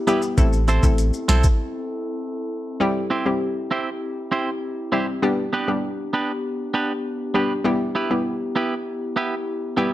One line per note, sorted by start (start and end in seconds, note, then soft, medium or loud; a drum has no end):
0.00 0.33 B3 medium
0.00 0.35 E4 medium
0.00 0.34 G4 medium
0.07 0.29 G3 medium
0.07 0.25 B3 medium
0.07 0.29 B3 medium
0.07 0.29 E4 medium
0.07 0.22 E4 medium
0.07 0.29 G4 medium
0.07 0.22 G4 medium
0.07 0.21 B4 medium
0.07 closed hi-hat soft
0.07 maracas soft
0.22 muted clean electric guitar stroke soft
0.22 maracas medium
0.38 0.80 A1 loud
0.38 0.59 A3 loud
0.38 0.59 C4 medium
0.38 2.78 C4 medium
0.38 0.59 E4 medium
0.38 2.78 E4 medium
0.38 2.78 A4 medium
0.38 0.60 A4 loud
0.38 kick loud
0.38 closed hi-hat medium
0.38 maracas medium
0.53 maracas medium
0.68 0.85 C4 medium
0.68 0.86 E4 medium
0.68 0.86 A4 medium
0.68 0.86 C5 loud
0.68 closed hi-hat soft
0.68 maracas medium
0.83 1.11 A1 medium
0.83 1.05 A3 medium
0.83 1.05 C4 medium
0.83 1.05 E4 medium
0.83 1.05 A4 medium
0.83 kick loud
0.83 maracas medium
0.98 closed hi-hat medium
0.98 maracas medium
1.14 maracas medium
1.28 1.43 B1 medium
1.28 1.46 C4 medium
1.28 1.46 E4 medium
1.28 1.46 A4 medium
1.28 1.46 C5 medium
1.28 snare loud
1.28 closed hi-hat medium
1.44 kick loud
1.44 maracas medium
2.80 3.02 G3 loud
2.80 5.20 C4 medium
2.80 3.02 C4 medium
2.80 5.20 E4 medium
2.80 3.02 E4 medium
2.80 5.20 G4 medium
2.80 3.02 G4 loud
3.10 3.28 C4 medium
3.10 3.28 E4 medium
3.10 3.28 G4 medium
3.10 3.28 C5 medium
3.26 3.47 G3 medium
3.26 3.47 C4 medium
3.26 3.48 E4 medium
3.26 3.48 G4 medium
3.71 3.88 C4 medium
3.71 3.89 E4 medium
3.71 3.89 G4 medium
3.71 3.89 C5 medium
4.32 4.49 C4 medium
4.32 4.49 E4 medium
4.32 4.49 G4 medium
4.32 4.50 C5 loud
4.92 5.14 G3 medium
4.92 5.10 C4 medium
4.92 5.14 C4 medium
4.92 5.14 E4 medium
4.92 5.07 E4 medium
4.92 5.14 G4 medium
4.92 5.07 G4 medium
4.92 5.06 C5 medium
5.07 muted clean electric guitar stroke soft
5.22 5.44 G3 medium
5.22 9.94 B3 medium
5.22 5.44 B3 medium
5.22 7.63 D4 medium
5.22 5.44 D4 medium
5.22 9.94 G4 medium
5.22 5.45 G4 loud
5.53 5.70 B3 medium
5.53 5.71 D4 medium
5.53 5.71 G4 medium
5.53 5.71 B4 medium
5.68 5.90 G3 medium
5.68 5.90 B3 medium
5.68 5.90 D4 medium
5.68 5.90 G4 medium
6.13 6.31 B3 medium
6.13 6.31 D4 medium
6.13 6.31 G4 medium
6.13 6.31 B4 medium
6.74 6.91 B3 medium
6.74 6.92 D4 medium
6.74 6.92 G4 medium
6.74 6.92 B4 medium
7.34 7.56 G3 medium
7.34 7.52 B3 medium
7.34 7.56 B3 medium
7.34 7.56 D4 medium
7.34 7.52 D4 medium
7.34 7.57 G4 medium
7.34 7.52 G4 medium
7.34 7.53 B4 medium
7.64 7.86 G3 loud
7.64 7.87 B3 medium
7.64 7.87 E4 medium
7.64 9.94 E4 medium
7.64 7.87 G4 loud
7.95 8.13 B3 medium
7.95 8.13 E4 medium
7.95 8.13 G4 medium
7.95 8.13 B4 medium
8.10 8.32 G3 medium
8.10 8.32 B3 medium
8.10 8.32 E4 medium
8.10 8.32 G4 medium
8.56 8.73 B3 medium
8.56 8.73 E4 medium
8.56 8.74 G4 medium
8.56 8.74 B4 medium
9.16 9.34 B3 medium
9.16 9.34 E4 medium
9.16 9.34 G4 medium
9.16 9.34 B4 loud
9.77 9.94 G3 medium
9.77 9.94 B3 medium
9.77 9.92 E4 medium
9.77 9.94 E4 medium
9.77 9.94 G4 medium
9.77 9.91 G4 medium
9.77 9.91 B4 medium